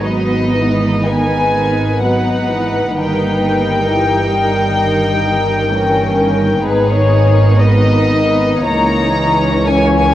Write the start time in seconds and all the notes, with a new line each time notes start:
Already playing: G#1 G#2 B3 D#4
0.02 F#3 B4 D#5
0.54 E3
1.06 D#3 B4 G#5
1.54 D#3
2.02 F#3 B3 D#4 F#5
2.50 E3
2.93 G1 G2 D#3 A#3 D#4 G5
3.41 D#3
3.86 E3 G3 A#4
4.31 D#3
4.79 D#3
5.72 E3 A#3 C#4 A#4
6.18 D#3
6.64 G#1 G#2 D#3 B3 D#4 G#4 B4
6.89 C#5
7.59 B3 B4 D#5
8.64 C#2 E3 A#3 C#5 A#5
9.16 C#4
9.66 A#3 C#5 G#5